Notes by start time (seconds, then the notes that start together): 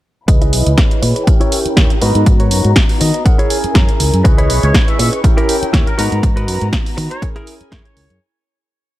0.28 C#2 E3 E4 G#4 B4 C#5 D#5 B5, muted clean electric guitar stroke, kick, closed hi-hat
0.41 E4 B4 D#5, closed hi-hat
0.53 B1, open hi-hat
0.66 C#2, closed hi-hat
0.78 kick, snare, closed hi-hat
0.91 closed hi-hat
1.02 A#2, muted clean electric guitar stroke, open hi-hat
1.15 muted clean electric guitar stroke, closed hi-hat
1.27 C#4 E4 G4 A#4 G5, muted clean electric guitar stroke, kick, closed hi-hat
1.40 E4 G4 C#5, closed hi-hat
1.52 open hi-hat
1.66 muted fingered electric bass stroke, closed hi-hat
1.77 D#2 E4 G4 C#5, kick, snare, closed hi-hat
1.90 closed hi-hat
2.01 G#2 B3 D#4 F#4 A#4 B4 A#5, open hi-hat
2.15 G#2, closed hi-hat
2.26 kick, closed hi-hat
2.39 F#4 A#4 C#5, closed hi-hat
2.51 F#2, open hi-hat
2.65 G#2, closed hi-hat
2.76 kick, snare, closed hi-hat
2.89 open hi-hat
3.00 D#3 D#5, muted clean electric guitar stroke, open hi-hat
3.14 muted clean electric guitar stroke, closed hi-hat
3.25 C#4 E4 G#4 A#4 F#5 G#5, muted clean electric guitar stroke, kick, closed hi-hat
3.38 E4 G#4 C#5, closed hi-hat
3.50 G#5, open hi-hat
3.64 muted fingered electric bass stroke, closed hi-hat
3.74 F#2 E4 G#4 C#5 A#5, kick, snare, closed hi-hat
3.89 closed hi-hat
4.00 C#2, muted clean electric guitar stroke, open hi-hat
4.13 F#2, closed hi-hat
4.24 C#2 C#4 E4 G#4 B4 D#5 C#6, muted clean electric guitar stroke, kick, closed hi-hat
4.38 E4 B4 C#5, closed hi-hat
4.50 B1, open hi-hat
4.63 C#2 C#5, closed hi-hat
4.74 kick, snare, closed hi-hat
4.88 E5, closed hi-hat
4.99 A#2 E5, muted clean electric guitar stroke, open hi-hat
5.12 muted clean electric guitar stroke, closed hi-hat
5.23 C#4 E4 G4 A#4 C#5 G5, muted clean electric guitar stroke, kick, closed hi-hat
5.37 E4 G4 A#4, closed hi-hat
5.49 open hi-hat, shaker
5.62 muted fingered electric bass stroke, closed hi-hat
5.73 D#2 E4 G4 C#5, kick, snare, closed hi-hat
5.87 A#4, closed hi-hat
5.98 G#2 B3 D#4 F#4 A#4 B4 A#5, open hi-hat
6.12 G#2, closed hi-hat
6.23 kick, closed hi-hat
6.36 F#4 A#4 B4, closed hi-hat
6.48 F#2, open hi-hat, shaker
6.61 G#2, closed hi-hat
6.73 kick, snare, closed hi-hat
6.86 open hi-hat
6.97 D#3, muted clean electric guitar stroke, open hi-hat, shaker
7.11 C#5, muted clean electric guitar stroke, closed hi-hat, shaker
7.22 C#4 E4 G#4 A#4 G#5, muted clean electric guitar stroke, kick, closed hi-hat
7.36 E4 G#4 A#4, closed hi-hat
7.47 open hi-hat, shaker
7.61 muted fingered electric bass stroke, closed hi-hat
7.72 F#2 E4 G#4 A#4 C#5, kick, snare, closed hi-hat
7.85 C#5, closed hi-hat
7.96 C#2, muted clean electric guitar stroke, open hi-hat, shaker
8.09 F#2, closed hi-hat, shaker